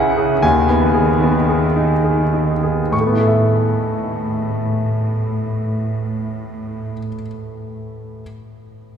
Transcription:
Already playing: grand piano C#2 C#4 E4 G#4 C#5 E5 F#5, cello section C#3
0.17 grand piano G#4
0.43 grand piano D#2 G#5, cello section D#3
0.68 grand piano B3
0.94 grand piano G#4
1.21 grand piano B3
1.49 grand piano G#4
1.76 grand piano D#4
2.04 grand piano G#4
2.33 grand piano D#4
2.63 grand piano G#4
2.92 grand piano A2 C#6, cello section A2
3.00 grand piano A3
3.07 grand piano B3
3.13 grand piano E4
3.21 grand piano A4
3.27 grand piano E5

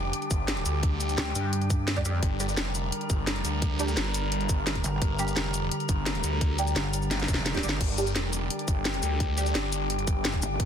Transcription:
Already playing: detuned saw bass F1, synth drone D3 G3 G4
0.13 closed hi-hat
0.22 closed hi-hat
0.31 detuned saw bass G1, kick, closed hi-hat, shaker
0.48 snare, closed hi-hat
0.57 closed hi-hat
0.66 detuned saw bass D2, closed hi-hat, shaker
0.83 kick, closed hi-hat
1.01 closed hi-hat, shaker
1.09 closed hi-hat, shaker
1.18 wobble bass D2, snare, closed hi-hat
1.35 wobble bass G2, open hi-hat, shaker
1.53 closed hi-hat
1.62 closed hi-hat
1.70 kick, closed hi-hat, shaker
1.88 snare, closed hi-hat
1.96 wobble bass F#2, synth stab G3 D4 G4, kick, closed hi-hat
2.05 synth stab G3 D4 G4, closed hi-hat, shaker
2.22 detuned saw bass G1, synth drone A#4, kick, closed hi-hat
2.40 synth stab G3 D4 G4, closed hi-hat, shaker
2.49 closed hi-hat, shaker
2.57 detuned saw bass F1, snare, closed hi-hat
2.75 closed hi-hat, shaker
2.92 closed hi-hat
3.01 closed hi-hat
3.10 detuned saw bass G1, kick, closed hi-hat, shaker
3.27 snare, closed hi-hat
3.36 closed hi-hat
3.45 detuned saw bass D2, closed hi-hat, shaker
3.62 kick, closed hi-hat
3.80 synth stab G3 D4 G4, closed hi-hat, shaker
3.88 closed hi-hat, shaker
3.97 detuned saw bass G1, snare, closed hi-hat
4.14 open hi-hat, shaker
4.32 closed hi-hat
4.41 closed hi-hat
4.49 detuned saw bass G1, kick, closed hi-hat, shaker
4.67 snare, closed hi-hat
4.75 kick, closed hi-hat
4.84 wobble bass G1, closed hi-hat, shaker
5.02 detuned saw bass G1, kick, closed hi-hat
5.19 synth stab G3 D4 G4, closed hi-hat, shaker
5.28 closed hi-hat, shaker
5.36 detuned saw bass F1, snare, closed hi-hat
5.54 closed hi-hat, shaker
5.71 closed hi-hat
5.80 closed hi-hat
5.89 detuned saw bass G1, kick, closed hi-hat, shaker
6.06 snare, closed hi-hat
6.15 closed hi-hat
6.24 detuned saw bass D2, closed hi-hat, shaker
6.41 kick, closed hi-hat
6.59 synth stab G3 D4 G4, closed hi-hat, shaker
6.67 closed hi-hat, shaker
6.76 wobble bass G1, snare, closed hi-hat
6.93 open hi-hat, shaker
7.02 shaker
7.11 snare, closed hi-hat
7.20 snare, closed hi-hat
7.28 wobble bass F1, kick, closed hi-hat, shaker
7.34 snare
7.46 snare, closed hi-hat
7.55 synth stab G3 D4 G4, kick, snare, closed hi-hat
7.63 wobble bass G1, synth stab G3 D4 G4, closed hi-hat, shaker
7.69 snare
7.81 detuned saw bass G1, synth drone G4, kick, closed hi-hat, crash
7.98 synth stab G3 D4 G4, closed hi-hat, shaker
8.07 closed hi-hat, shaker
8.15 detuned saw bass F1, snare, closed hi-hat
8.33 closed hi-hat, shaker
8.50 closed hi-hat
8.59 closed hi-hat
8.68 detuned saw bass G1, kick, closed hi-hat, shaker
8.85 snare, closed hi-hat
8.94 closed hi-hat
9.03 detuned saw bass D2, closed hi-hat, shaker
9.20 kick, closed hi-hat
9.38 synth stab G3 D4 G4, closed hi-hat, shaker
9.46 closed hi-hat, shaker
9.55 detuned saw bass G1, snare, closed hi-hat
9.73 open hi-hat, shaker
9.90 closed hi-hat
9.99 closed hi-hat
10.07 detuned saw bass G1, kick, closed hi-hat, shaker
10.25 snare, closed hi-hat
10.34 kick, closed hi-hat
10.42 wobble bass G1, closed hi-hat, shaker
10.60 detuned saw bass G1, kick, closed hi-hat

